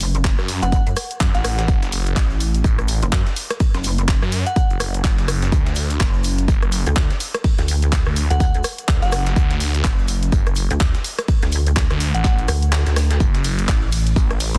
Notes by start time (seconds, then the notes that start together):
Already playing: F#1
0.00 open hi-hat, tambourine, shaker
0.15 closed hi-hat, shaker
0.24 kick, snare, clap, tambourine, shaker
0.38 F#2, cross-stick, shaker
0.48 open hi-hat, tambourine, shaker
0.62 F#1 F#5, closed hi-hat, shaker
0.72 F#5, kick, tambourine, shaker
0.86 F#2, closed hi-hat, shaker
0.96 cross-stick, open hi-hat, tambourine, shaker
1.10 closed hi-hat, shaker
1.20 F#2, kick, snare, clap, tambourine, shaker
1.34 A1 F#5, snare, closed hi-hat, shaker
1.44 cross-stick, open hi-hat, tambourine, shaker
1.58 snare, closed hi-hat, shaker
1.68 F#1, kick, tambourine, shaker
1.83 snare, closed hi-hat, shaker
1.92 F#1, open hi-hat, tambourine, shaker
2.07 closed hi-hat, shaker
2.16 A1, kick, snare, clap, tambourine, shaker
2.30 shaker
2.40 open hi-hat, tambourine, shaker
2.54 closed hi-hat, shaker
2.64 A1, kick, tambourine, shaker
2.79 cross-stick, closed hi-hat, shaker
2.88 open hi-hat, tambourine, shaker
3.01 F#1, closed hi-hat, shaker
3.12 F#2, kick, snare, clap, tambourine, shaker
3.27 snare, closed hi-hat, shaker
3.36 open hi-hat, tambourine, shaker
3.50 cross-stick, closed hi-hat, shaker
3.60 kick, open hi-hat, shaker
3.74 F#1, snare, closed hi-hat, shaker
3.84 open hi-hat, tambourine, shaker
3.98 closed hi-hat, shaker
4.08 kick, snare, clap, tambourine, shaker
4.22 F#2, cross-stick, shaker
4.32 open hi-hat, tambourine, shaker
4.46 F#5, closed hi-hat, shaker
4.56 F#5, kick, tambourine, shaker
4.70 F#1, closed hi-hat, shaker
4.80 cross-stick, open hi-hat, tambourine, shaker
4.94 closed hi-hat, shaker
5.04 kick, snare, clap, tambourine, shaker
5.18 F#1, snare, closed hi-hat, shaker
5.28 cross-stick, open hi-hat, tambourine, shaker
5.42 snare, closed hi-hat, shaker
5.52 D2, kick, tambourine, shaker
5.66 snare, closed hi-hat, shaker
5.75 D2, open hi-hat, tambourine, shaker
5.90 closed hi-hat, shaker
6.00 F#1, kick, snare, clap, tambourine, shaker
6.13 shaker
6.23 open hi-hat, tambourine, shaker
6.38 closed hi-hat, shaker
6.48 F#1, kick, tambourine, shaker
6.62 cross-stick, closed hi-hat, shaker
6.72 open hi-hat, tambourine, shaker
6.86 D2, closed hi-hat, shaker
6.96 D2, kick, snare, clap, tambourine, shaker
7.10 snare, closed hi-hat, shaker
7.20 open hi-hat, tambourine, shaker
7.35 cross-stick, closed hi-hat, shaker
7.44 kick, open hi-hat, shaker
7.58 D2, snare, closed hi-hat, shaker
7.68 open hi-hat, tambourine, shaker
7.82 closed hi-hat, shaker
7.92 kick, snare, clap, tambourine, shaker
8.05 D2, cross-stick, shaker
8.16 open hi-hat, tambourine, shaker
8.30 D2 F#5, closed hi-hat, shaker
8.40 F#5, kick, tambourine, shaker
8.54 D2, closed hi-hat, shaker
8.64 cross-stick, open hi-hat, tambourine, shaker
8.78 closed hi-hat, shaker
8.88 D2, kick, snare, clap, tambourine, shaker
9.02 F#1 F#5, snare, closed hi-hat, shaker
9.12 cross-stick, open hi-hat, tambourine, shaker
9.26 snare, closed hi-hat, shaker
9.36 D2, kick, tambourine, shaker
9.51 snare, closed hi-hat, shaker
9.60 D2, open hi-hat, tambourine, shaker
9.75 closed hi-hat, shaker
9.84 F#1, kick, snare, clap, tambourine, shaker
9.99 shaker
10.08 open hi-hat, tambourine, shaker
10.23 closed hi-hat, shaker
10.32 F#1, kick, tambourine, shaker
10.46 cross-stick, closed hi-hat, shaker
10.55 open hi-hat, tambourine, shaker
10.71 D2, closed hi-hat, shaker
10.80 D2, kick, snare, clap, tambourine, shaker
10.95 snare, closed hi-hat, shaker
11.04 open hi-hat, tambourine, shaker
11.19 cross-stick, closed hi-hat, shaker
11.28 kick, open hi-hat, shaker
11.42 D2, snare, closed hi-hat, shaker
11.52 open hi-hat, tambourine, shaker
11.67 closed hi-hat, shaker
11.76 kick, snare, clap, tambourine, shaker
11.90 D2, cross-stick, closed hi-hat, shaker
12.00 open hi-hat, tambourine, shaker
12.14 A1 F#5, closed hi-hat, shaker
12.24 F#5, kick, snare, clap, tambourine, shaker
12.39 closed hi-hat, shaker
12.48 D2, cross-stick, open hi-hat, tambourine, shaker
12.62 closed hi-hat, shaker
12.72 snare, clap, tambourine, shaker
12.86 D2, snare, closed hi-hat, shaker
12.96 cross-stick, snare, open hi-hat, tambourine, shaker
13.10 snare, closed hi-hat, shaker
13.20 F#1, kick, tambourine, shaker
13.34 snare, closed hi-hat, shaker
13.44 F#1, open hi-hat, ride, tambourine, shaker
13.59 closed hi-hat, shaker
13.68 A1, kick, snare, clap, tambourine, shaker
13.82 shaker
13.92 open hi-hat, ride, tambourine, shaker
14.06 closed hi-hat, shaker
14.16 A1, kick, tambourine, shaker
14.31 cross-stick, closed hi-hat, shaker
14.40 open hi-hat, ride, tambourine, shaker
14.54 F#1, closed hi-hat, shaker